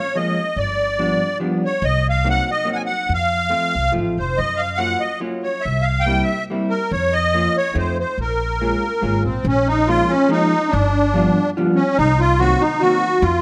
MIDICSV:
0, 0, Header, 1, 4, 480
1, 0, Start_track
1, 0, Key_signature, -5, "minor"
1, 0, Tempo, 423430
1, 646, Time_signature, 3, 2, 24, 8
1, 11686, Tempo, 417827
1, 15256, End_track
2, 0, Start_track
2, 0, Title_t, "Accordion"
2, 0, Program_c, 0, 21
2, 0, Note_on_c, 0, 73, 91
2, 183, Note_on_c, 0, 75, 78
2, 188, Note_off_c, 0, 73, 0
2, 657, Note_on_c, 0, 74, 80
2, 668, Note_off_c, 0, 75, 0
2, 1565, Note_off_c, 0, 74, 0
2, 1872, Note_on_c, 0, 73, 78
2, 2090, Note_on_c, 0, 75, 94
2, 2098, Note_off_c, 0, 73, 0
2, 2346, Note_off_c, 0, 75, 0
2, 2376, Note_on_c, 0, 77, 95
2, 2588, Note_off_c, 0, 77, 0
2, 2602, Note_on_c, 0, 78, 110
2, 2839, Note_off_c, 0, 78, 0
2, 2845, Note_on_c, 0, 75, 97
2, 3059, Note_off_c, 0, 75, 0
2, 3088, Note_on_c, 0, 78, 81
2, 3120, Note_on_c, 0, 80, 75
2, 3144, Note_off_c, 0, 78, 0
2, 3199, Note_off_c, 0, 80, 0
2, 3239, Note_on_c, 0, 78, 92
2, 3543, Note_off_c, 0, 78, 0
2, 3559, Note_on_c, 0, 77, 95
2, 4456, Note_off_c, 0, 77, 0
2, 4749, Note_on_c, 0, 72, 65
2, 4959, Note_on_c, 0, 75, 95
2, 4978, Note_off_c, 0, 72, 0
2, 5174, Note_on_c, 0, 77, 80
2, 5223, Note_off_c, 0, 75, 0
2, 5411, Note_on_c, 0, 78, 103
2, 5431, Note_off_c, 0, 77, 0
2, 5669, Note_on_c, 0, 75, 74
2, 5690, Note_off_c, 0, 78, 0
2, 5895, Note_off_c, 0, 75, 0
2, 6159, Note_on_c, 0, 73, 62
2, 6355, Note_on_c, 0, 76, 81
2, 6402, Note_off_c, 0, 73, 0
2, 6593, Note_on_c, 0, 77, 85
2, 6639, Note_off_c, 0, 76, 0
2, 6804, Note_on_c, 0, 79, 100
2, 6857, Note_off_c, 0, 77, 0
2, 7068, Note_on_c, 0, 76, 87
2, 7072, Note_off_c, 0, 79, 0
2, 7307, Note_off_c, 0, 76, 0
2, 7591, Note_on_c, 0, 70, 78
2, 7832, Note_off_c, 0, 70, 0
2, 7842, Note_on_c, 0, 73, 88
2, 8080, Note_on_c, 0, 75, 109
2, 8097, Note_off_c, 0, 73, 0
2, 8575, Note_off_c, 0, 75, 0
2, 8583, Note_on_c, 0, 73, 96
2, 8807, Note_off_c, 0, 73, 0
2, 8817, Note_on_c, 0, 72, 72
2, 9042, Note_off_c, 0, 72, 0
2, 9059, Note_on_c, 0, 72, 68
2, 9286, Note_off_c, 0, 72, 0
2, 9301, Note_on_c, 0, 70, 75
2, 10466, Note_off_c, 0, 70, 0
2, 10477, Note_on_c, 0, 60, 66
2, 10724, Note_off_c, 0, 60, 0
2, 10741, Note_on_c, 0, 61, 90
2, 10966, Note_on_c, 0, 63, 93
2, 10971, Note_off_c, 0, 61, 0
2, 11201, Note_on_c, 0, 65, 111
2, 11210, Note_off_c, 0, 63, 0
2, 11430, Note_on_c, 0, 61, 97
2, 11467, Note_off_c, 0, 65, 0
2, 11681, Note_off_c, 0, 61, 0
2, 11683, Note_on_c, 0, 63, 97
2, 12125, Note_on_c, 0, 62, 88
2, 12183, Note_off_c, 0, 63, 0
2, 13059, Note_off_c, 0, 62, 0
2, 13347, Note_on_c, 0, 61, 84
2, 13598, Note_off_c, 0, 61, 0
2, 13599, Note_on_c, 0, 63, 121
2, 13855, Note_on_c, 0, 65, 110
2, 13863, Note_off_c, 0, 63, 0
2, 14082, Note_on_c, 0, 66, 113
2, 14091, Note_off_c, 0, 65, 0
2, 14325, Note_on_c, 0, 63, 106
2, 14345, Note_off_c, 0, 66, 0
2, 14547, Note_on_c, 0, 66, 112
2, 14567, Note_off_c, 0, 63, 0
2, 15027, Note_on_c, 0, 65, 99
2, 15053, Note_off_c, 0, 66, 0
2, 15256, Note_off_c, 0, 65, 0
2, 15256, End_track
3, 0, Start_track
3, 0, Title_t, "Hollow-body jazz guitar"
3, 0, Program_c, 1, 26
3, 170, Note_on_c, 1, 53, 60
3, 180, Note_on_c, 1, 56, 43
3, 189, Note_on_c, 1, 58, 48
3, 196, Note_on_c, 1, 61, 53
3, 421, Note_off_c, 1, 53, 0
3, 428, Note_off_c, 1, 56, 0
3, 429, Note_off_c, 1, 58, 0
3, 430, Note_off_c, 1, 61, 0
3, 1121, Note_on_c, 1, 53, 56
3, 1122, Note_on_c, 1, 55, 52
3, 1129, Note_on_c, 1, 59, 42
3, 1130, Note_on_c, 1, 62, 71
3, 1376, Note_off_c, 1, 55, 0
3, 1376, Note_off_c, 1, 59, 0
3, 1378, Note_off_c, 1, 53, 0
3, 1380, Note_off_c, 1, 62, 0
3, 1584, Note_on_c, 1, 53, 66
3, 1593, Note_on_c, 1, 55, 63
3, 1598, Note_on_c, 1, 62, 66
3, 1605, Note_on_c, 1, 59, 55
3, 1850, Note_off_c, 1, 53, 0
3, 1850, Note_off_c, 1, 59, 0
3, 1851, Note_off_c, 1, 55, 0
3, 1851, Note_off_c, 1, 62, 0
3, 2544, Note_on_c, 1, 58, 57
3, 2551, Note_on_c, 1, 63, 65
3, 2557, Note_on_c, 1, 54, 61
3, 2563, Note_on_c, 1, 60, 49
3, 2804, Note_off_c, 1, 63, 0
3, 2805, Note_off_c, 1, 58, 0
3, 2810, Note_off_c, 1, 60, 0
3, 2811, Note_off_c, 1, 54, 0
3, 3001, Note_on_c, 1, 58, 50
3, 3012, Note_on_c, 1, 63, 53
3, 3017, Note_on_c, 1, 54, 57
3, 3023, Note_on_c, 1, 60, 41
3, 3270, Note_off_c, 1, 58, 0
3, 3272, Note_off_c, 1, 63, 0
3, 3277, Note_off_c, 1, 54, 0
3, 3277, Note_off_c, 1, 60, 0
3, 3962, Note_on_c, 1, 57, 50
3, 3972, Note_on_c, 1, 53, 52
3, 3973, Note_on_c, 1, 60, 45
3, 3977, Note_on_c, 1, 65, 62
3, 4233, Note_off_c, 1, 57, 0
3, 4235, Note_off_c, 1, 60, 0
3, 4237, Note_off_c, 1, 53, 0
3, 4240, Note_off_c, 1, 65, 0
3, 4443, Note_on_c, 1, 53, 61
3, 4447, Note_on_c, 1, 57, 47
3, 4456, Note_on_c, 1, 60, 50
3, 4460, Note_on_c, 1, 65, 68
3, 4716, Note_off_c, 1, 53, 0
3, 4719, Note_off_c, 1, 57, 0
3, 4721, Note_off_c, 1, 60, 0
3, 4724, Note_off_c, 1, 65, 0
3, 5420, Note_on_c, 1, 54, 59
3, 5427, Note_on_c, 1, 61, 41
3, 5431, Note_on_c, 1, 58, 53
3, 5439, Note_on_c, 1, 65, 61
3, 5687, Note_off_c, 1, 54, 0
3, 5687, Note_off_c, 1, 61, 0
3, 5692, Note_off_c, 1, 58, 0
3, 5696, Note_off_c, 1, 65, 0
3, 5897, Note_on_c, 1, 54, 59
3, 5903, Note_on_c, 1, 65, 60
3, 5905, Note_on_c, 1, 58, 39
3, 5908, Note_on_c, 1, 61, 51
3, 6165, Note_off_c, 1, 54, 0
3, 6167, Note_off_c, 1, 58, 0
3, 6168, Note_off_c, 1, 65, 0
3, 6170, Note_off_c, 1, 61, 0
3, 6870, Note_on_c, 1, 58, 59
3, 6879, Note_on_c, 1, 55, 69
3, 6886, Note_on_c, 1, 60, 53
3, 6886, Note_on_c, 1, 64, 63
3, 7126, Note_off_c, 1, 58, 0
3, 7131, Note_off_c, 1, 55, 0
3, 7132, Note_off_c, 1, 64, 0
3, 7134, Note_off_c, 1, 60, 0
3, 7369, Note_on_c, 1, 55, 59
3, 7375, Note_on_c, 1, 58, 43
3, 7383, Note_on_c, 1, 60, 52
3, 7384, Note_on_c, 1, 64, 67
3, 7616, Note_off_c, 1, 58, 0
3, 7617, Note_off_c, 1, 55, 0
3, 7617, Note_off_c, 1, 64, 0
3, 7621, Note_off_c, 1, 60, 0
3, 8321, Note_on_c, 1, 58, 52
3, 8324, Note_on_c, 1, 53, 56
3, 8325, Note_on_c, 1, 61, 46
3, 8333, Note_on_c, 1, 65, 57
3, 8568, Note_off_c, 1, 61, 0
3, 8569, Note_off_c, 1, 58, 0
3, 8571, Note_off_c, 1, 53, 0
3, 8571, Note_off_c, 1, 65, 0
3, 8770, Note_on_c, 1, 63, 52
3, 8774, Note_on_c, 1, 57, 59
3, 8782, Note_on_c, 1, 65, 54
3, 8784, Note_on_c, 1, 60, 38
3, 9033, Note_off_c, 1, 63, 0
3, 9036, Note_off_c, 1, 57, 0
3, 9038, Note_off_c, 1, 60, 0
3, 9039, Note_off_c, 1, 65, 0
3, 9764, Note_on_c, 1, 56, 62
3, 9766, Note_on_c, 1, 58, 40
3, 9767, Note_on_c, 1, 65, 66
3, 9773, Note_on_c, 1, 61, 43
3, 10014, Note_off_c, 1, 58, 0
3, 10015, Note_off_c, 1, 56, 0
3, 10017, Note_off_c, 1, 65, 0
3, 10018, Note_off_c, 1, 61, 0
3, 10219, Note_on_c, 1, 56, 61
3, 10227, Note_on_c, 1, 58, 46
3, 10232, Note_on_c, 1, 65, 61
3, 10233, Note_on_c, 1, 61, 53
3, 10487, Note_off_c, 1, 56, 0
3, 10489, Note_off_c, 1, 58, 0
3, 10489, Note_off_c, 1, 65, 0
3, 10493, Note_off_c, 1, 61, 0
3, 11207, Note_on_c, 1, 53, 61
3, 11209, Note_on_c, 1, 56, 44
3, 11210, Note_on_c, 1, 58, 60
3, 11217, Note_on_c, 1, 65, 58
3, 11220, Note_on_c, 1, 61, 59
3, 11461, Note_off_c, 1, 56, 0
3, 11463, Note_off_c, 1, 53, 0
3, 11464, Note_off_c, 1, 58, 0
3, 11465, Note_off_c, 1, 65, 0
3, 11469, Note_off_c, 1, 61, 0
3, 11657, Note_on_c, 1, 56, 66
3, 11662, Note_on_c, 1, 53, 59
3, 11667, Note_on_c, 1, 61, 54
3, 11669, Note_on_c, 1, 58, 53
3, 11678, Note_on_c, 1, 65, 50
3, 11928, Note_off_c, 1, 56, 0
3, 11930, Note_off_c, 1, 61, 0
3, 11932, Note_off_c, 1, 53, 0
3, 11932, Note_off_c, 1, 58, 0
3, 11933, Note_off_c, 1, 65, 0
3, 12635, Note_on_c, 1, 53, 74
3, 12644, Note_on_c, 1, 55, 54
3, 12653, Note_on_c, 1, 62, 53
3, 12659, Note_on_c, 1, 65, 65
3, 12662, Note_on_c, 1, 59, 47
3, 12898, Note_off_c, 1, 53, 0
3, 12899, Note_off_c, 1, 55, 0
3, 12899, Note_off_c, 1, 59, 0
3, 12900, Note_off_c, 1, 65, 0
3, 12901, Note_off_c, 1, 62, 0
3, 13135, Note_on_c, 1, 65, 78
3, 13144, Note_on_c, 1, 53, 80
3, 13145, Note_on_c, 1, 62, 66
3, 13146, Note_on_c, 1, 55, 59
3, 13154, Note_on_c, 1, 59, 55
3, 13384, Note_off_c, 1, 65, 0
3, 13388, Note_off_c, 1, 55, 0
3, 13389, Note_off_c, 1, 53, 0
3, 13390, Note_off_c, 1, 62, 0
3, 13391, Note_off_c, 1, 59, 0
3, 14090, Note_on_c, 1, 51, 68
3, 14098, Note_on_c, 1, 60, 66
3, 14100, Note_on_c, 1, 58, 57
3, 14105, Note_on_c, 1, 54, 68
3, 14105, Note_on_c, 1, 63, 66
3, 14343, Note_off_c, 1, 51, 0
3, 14345, Note_off_c, 1, 58, 0
3, 14345, Note_off_c, 1, 60, 0
3, 14345, Note_off_c, 1, 63, 0
3, 14348, Note_off_c, 1, 54, 0
3, 14566, Note_on_c, 1, 51, 64
3, 14573, Note_on_c, 1, 60, 45
3, 14575, Note_on_c, 1, 54, 53
3, 14580, Note_on_c, 1, 63, 64
3, 14582, Note_on_c, 1, 58, 57
3, 14821, Note_off_c, 1, 51, 0
3, 14822, Note_off_c, 1, 60, 0
3, 14824, Note_off_c, 1, 63, 0
3, 14826, Note_off_c, 1, 54, 0
3, 14828, Note_off_c, 1, 58, 0
3, 15256, End_track
4, 0, Start_track
4, 0, Title_t, "Upright bass"
4, 0, Program_c, 2, 32
4, 639, Note_on_c, 2, 31, 72
4, 1265, Note_off_c, 2, 31, 0
4, 2064, Note_on_c, 2, 36, 92
4, 2690, Note_off_c, 2, 36, 0
4, 3504, Note_on_c, 2, 41, 85
4, 3985, Note_off_c, 2, 41, 0
4, 4254, Note_on_c, 2, 36, 64
4, 4458, Note_off_c, 2, 36, 0
4, 4490, Note_on_c, 2, 33, 61
4, 4715, Note_off_c, 2, 33, 0
4, 4736, Note_on_c, 2, 29, 67
4, 4941, Note_off_c, 2, 29, 0
4, 4970, Note_on_c, 2, 42, 83
4, 5595, Note_off_c, 2, 42, 0
4, 6409, Note_on_c, 2, 36, 79
4, 7026, Note_off_c, 2, 36, 0
4, 7838, Note_on_c, 2, 41, 86
4, 8459, Note_off_c, 2, 41, 0
4, 8788, Note_on_c, 2, 41, 87
4, 9102, Note_off_c, 2, 41, 0
4, 9269, Note_on_c, 2, 34, 75
4, 9900, Note_off_c, 2, 34, 0
4, 10232, Note_on_c, 2, 32, 59
4, 10466, Note_off_c, 2, 32, 0
4, 10487, Note_on_c, 2, 34, 62
4, 10698, Note_off_c, 2, 34, 0
4, 10708, Note_on_c, 2, 34, 90
4, 11340, Note_off_c, 2, 34, 0
4, 12173, Note_on_c, 2, 31, 92
4, 12795, Note_off_c, 2, 31, 0
4, 13614, Note_on_c, 2, 36, 91
4, 14235, Note_off_c, 2, 36, 0
4, 15033, Note_on_c, 2, 41, 101
4, 15256, Note_off_c, 2, 41, 0
4, 15256, End_track
0, 0, End_of_file